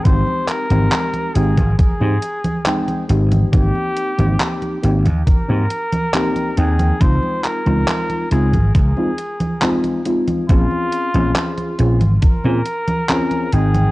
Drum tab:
HH |x-xxxxxxx-xxxxxx|x-xxxxxxx-xxxxxx|x-xxxxxxx-xxxxxx|x-xxxxxxx-xxxxxx|
CP |--x-x-------x---|----x-------x---|--x-x-------x---|----x-------x---|
CG |oo-ooo-ooo-ooo-o|oo-ooo-ooo-ooo-o|oo-ooo-ooo-ooo-o|oo-ooo-ooo-ooo-o|
BD |o------oo-------|o-------o-------|o------oo-------|o-------o-------|